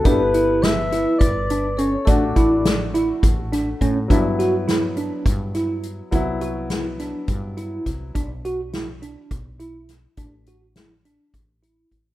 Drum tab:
HH |xxxxxxx|xxxxxxx|xxxxxxx|xxxxxxx|
SD |--oo---|--o--o-|-oo--o-|--oo--o|
BD |o---o--|oo--o-o|o---o--|o---o-o|

HH |xxxxxxx|xxxxxxx|
SD |--o---o|--o----|
BD |o---o--|o---o-o|